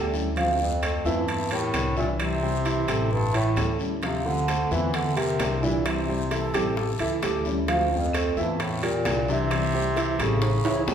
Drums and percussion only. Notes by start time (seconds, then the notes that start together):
0.14 short guiro
0.36 high timbale, long guiro
0.82 high timbale, short guiro, claves
1.05 short guiro
1.28 high timbale, long guiro
1.51 high timbale
1.74 high timbale, low timbale, short guiro, claves
1.97 short guiro
2.19 high timbale, long guiro, claves
2.65 high timbale, short guiro
2.88 high timbale, short guiro, claves
3.11 long guiro
3.34 high timbale
3.56 high timbale, low timbale, short guiro, claves
3.79 short guiro
4.02 high bongo, high timbale, long guiro
4.48 high bongo, high timbale, short guiro, claves
4.71 short guiro
4.94 high bongo, high timbale, long guiro
5.17 high timbale
5.39 high bongo, low bongo, high timbale, low timbale, short guiro, claves
5.63 short guiro
5.85 high bongo, high timbale, long guiro, claves
6.09 high bongo
6.31 high bongo, high timbale, short guiro
6.54 high timbale, short guiro, claves
6.77 high bongo, long guiro
6.99 high bongo, high timbale
7.22 high bongo, low bongo, high timbale, short guiro, claves
7.45 high bongo, short guiro
7.68 high bongo, high timbale, long guiro
8.13 high bongo, high timbale, short guiro, claves
8.37 short guiro
8.60 high bongo, high timbale, long guiro
8.83 high timbale
9.05 high bongo, low bongo, high timbale, low timbale, short guiro, claves
9.28 short guiro
9.51 high bongo, high timbale, long guiro, claves
9.74 high bongo
9.97 high bongo, high timbale, short guiro
10.19 high timbale, short guiro, claves
10.42 high bongo, high timbale, long guiro
10.65 high bongo, high timbale
10.88 high bongo, low bongo, low timbale, short guiro, claves